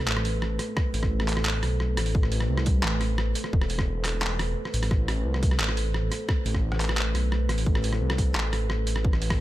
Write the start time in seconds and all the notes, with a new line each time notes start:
Already playing: A3 A4 B4 C5
0.07 A1, clap
0.17 cross-stick
0.25 open hi-hat
0.42 cross-stick
0.59 cross-stick, closed hi-hat
0.77 kick, cross-stick
0.94 A1, open hi-hat
1.03 kick, cross-stick
1.20 cross-stick
1.28 clap, closed hi-hat
1.37 cross-stick
1.45 clap
1.63 B1, cross-stick, open hi-hat
1.80 cross-stick
1.97 A1, cross-stick, closed hi-hat
2.06 open hi-hat
2.15 A1, kick
2.23 cross-stick
2.32 open hi-hat
2.40 cross-stick
2.49 C2
2.58 cross-stick
2.66 kick, closed hi-hat
2.83 A1, cross-stick, clap
3.01 cross-stick, open hi-hat
3.18 cross-stick
3.35 closed hi-hat
3.44 cross-stick
3.53 E1, kick
3.62 cross-stick
3.70 open hi-hat
3.79 kick, cross-stick
4.05 cross-stick, clap, closed hi-hat
4.22 cross-stick, clap
4.39 cross-stick, open hi-hat
4.65 cross-stick
4.74 A1, closed hi-hat
4.83 cross-stick, open hi-hat
4.91 A1, kick, cross-stick
5.08 cross-stick, open hi-hat
5.25 C2
5.34 cross-stick
5.43 kick, closed hi-hat
5.51 cross-stick
5.59 A1, clap
5.69 cross-stick
5.77 open hi-hat
5.94 cross-stick
6.12 cross-stick, closed hi-hat
6.29 kick, cross-stick
6.45 A1, open hi-hat
6.54 kick, cross-stick
6.72 cross-stick
6.80 clap, closed hi-hat
6.89 cross-stick
6.97 clap
7.14 B1, cross-stick, open hi-hat
7.32 cross-stick
7.49 A1, cross-stick, closed hi-hat
7.58 open hi-hat
7.66 A1, kick
7.75 cross-stick
7.84 open hi-hat
7.93 cross-stick
8.01 C2
8.10 cross-stick
8.18 kick, closed hi-hat
8.35 A1, cross-stick, clap
8.53 cross-stick, open hi-hat
8.70 cross-stick
8.87 A1, closed hi-hat
8.96 cross-stick
9.05 kick
9.13 cross-stick
9.22 open hi-hat
9.30 kick, cross-stick, open hi-hat